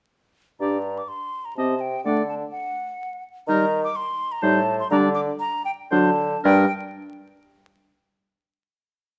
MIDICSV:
0, 0, Header, 1, 6, 480
1, 0, Start_track
1, 0, Key_signature, -2, "minor"
1, 0, Tempo, 490597
1, 591, Time_signature, 3, 2, 24, 8
1, 1543, Tempo, 478851
1, 5383, Tempo, 516796
1, 6823, Tempo, 501672
1, 8951, End_track
2, 0, Start_track
2, 0, Title_t, "Flute"
2, 0, Program_c, 0, 73
2, 586, Note_on_c, 0, 82, 64
2, 957, Note_on_c, 0, 86, 59
2, 971, Note_off_c, 0, 82, 0
2, 1060, Note_on_c, 0, 84, 67
2, 1074, Note_off_c, 0, 86, 0
2, 1419, Note_on_c, 0, 82, 57
2, 1434, Note_off_c, 0, 84, 0
2, 1530, Note_off_c, 0, 82, 0
2, 1536, Note_on_c, 0, 81, 60
2, 1772, Note_on_c, 0, 79, 67
2, 1787, Note_off_c, 0, 81, 0
2, 2004, Note_off_c, 0, 79, 0
2, 2010, Note_on_c, 0, 78, 65
2, 2247, Note_off_c, 0, 78, 0
2, 2253, Note_on_c, 0, 81, 62
2, 2313, Note_off_c, 0, 81, 0
2, 2482, Note_on_c, 0, 78, 78
2, 3192, Note_off_c, 0, 78, 0
2, 3444, Note_on_c, 0, 82, 97
2, 3782, Note_off_c, 0, 82, 0
2, 3811, Note_on_c, 0, 86, 92
2, 3929, Note_on_c, 0, 84, 89
2, 3944, Note_off_c, 0, 86, 0
2, 4290, Note_on_c, 0, 82, 85
2, 4305, Note_off_c, 0, 84, 0
2, 4392, Note_on_c, 0, 81, 93
2, 4407, Note_off_c, 0, 82, 0
2, 4762, Note_off_c, 0, 81, 0
2, 4770, Note_on_c, 0, 84, 84
2, 4872, Note_off_c, 0, 84, 0
2, 4878, Note_on_c, 0, 82, 97
2, 4938, Note_off_c, 0, 82, 0
2, 5119, Note_on_c, 0, 86, 94
2, 5179, Note_off_c, 0, 86, 0
2, 5370, Note_on_c, 0, 82, 105
2, 5603, Note_off_c, 0, 82, 0
2, 5608, Note_on_c, 0, 79, 86
2, 5664, Note_off_c, 0, 79, 0
2, 5855, Note_on_c, 0, 81, 83
2, 6340, Note_off_c, 0, 81, 0
2, 6350, Note_on_c, 0, 79, 94
2, 6614, Note_off_c, 0, 79, 0
2, 8951, End_track
3, 0, Start_track
3, 0, Title_t, "Oboe"
3, 0, Program_c, 1, 68
3, 598, Note_on_c, 1, 74, 38
3, 764, Note_off_c, 1, 74, 0
3, 1551, Note_on_c, 1, 75, 43
3, 1715, Note_off_c, 1, 75, 0
3, 2026, Note_on_c, 1, 74, 47
3, 2191, Note_off_c, 1, 74, 0
3, 3461, Note_on_c, 1, 70, 60
3, 3626, Note_off_c, 1, 70, 0
3, 4398, Note_on_c, 1, 72, 73
3, 4570, Note_off_c, 1, 72, 0
3, 4897, Note_on_c, 1, 74, 71
3, 5065, Note_off_c, 1, 74, 0
3, 5850, Note_on_c, 1, 72, 68
3, 6026, Note_off_c, 1, 72, 0
3, 6342, Note_on_c, 1, 70, 78
3, 6542, Note_off_c, 1, 70, 0
3, 8951, End_track
4, 0, Start_track
4, 0, Title_t, "Clarinet"
4, 0, Program_c, 2, 71
4, 592, Note_on_c, 2, 67, 45
4, 760, Note_off_c, 2, 67, 0
4, 1546, Note_on_c, 2, 67, 47
4, 1712, Note_off_c, 2, 67, 0
4, 2030, Note_on_c, 2, 62, 52
4, 2194, Note_off_c, 2, 62, 0
4, 3455, Note_on_c, 2, 63, 65
4, 3622, Note_off_c, 2, 63, 0
4, 4404, Note_on_c, 2, 63, 69
4, 4573, Note_off_c, 2, 63, 0
4, 4892, Note_on_c, 2, 62, 81
4, 5062, Note_off_c, 2, 62, 0
4, 5856, Note_on_c, 2, 62, 70
4, 6030, Note_off_c, 2, 62, 0
4, 6348, Note_on_c, 2, 62, 82
4, 6546, Note_off_c, 2, 62, 0
4, 8951, End_track
5, 0, Start_track
5, 0, Title_t, "French horn"
5, 0, Program_c, 3, 60
5, 594, Note_on_c, 3, 62, 49
5, 761, Note_off_c, 3, 62, 0
5, 1541, Note_on_c, 3, 60, 49
5, 1709, Note_off_c, 3, 60, 0
5, 2024, Note_on_c, 3, 57, 52
5, 2189, Note_off_c, 3, 57, 0
5, 3460, Note_on_c, 3, 55, 64
5, 3625, Note_off_c, 3, 55, 0
5, 4400, Note_on_c, 3, 55, 70
5, 4571, Note_off_c, 3, 55, 0
5, 4890, Note_on_c, 3, 55, 75
5, 5061, Note_off_c, 3, 55, 0
5, 5858, Note_on_c, 3, 54, 70
5, 6031, Note_off_c, 3, 54, 0
5, 6351, Note_on_c, 3, 55, 82
5, 6548, Note_off_c, 3, 55, 0
5, 8951, End_track
6, 0, Start_track
6, 0, Title_t, "Bassoon"
6, 0, Program_c, 4, 70
6, 594, Note_on_c, 4, 43, 56
6, 993, Note_off_c, 4, 43, 0
6, 1538, Note_on_c, 4, 48, 48
6, 1939, Note_off_c, 4, 48, 0
6, 2017, Note_on_c, 4, 50, 57
6, 2416, Note_off_c, 4, 50, 0
6, 3446, Note_on_c, 4, 51, 79
6, 3848, Note_off_c, 4, 51, 0
6, 4400, Note_on_c, 4, 45, 80
6, 4807, Note_off_c, 4, 45, 0
6, 4881, Note_on_c, 4, 50, 86
6, 5295, Note_off_c, 4, 50, 0
6, 5850, Note_on_c, 4, 50, 75
6, 6268, Note_off_c, 4, 50, 0
6, 6351, Note_on_c, 4, 43, 90
6, 6549, Note_off_c, 4, 43, 0
6, 8951, End_track
0, 0, End_of_file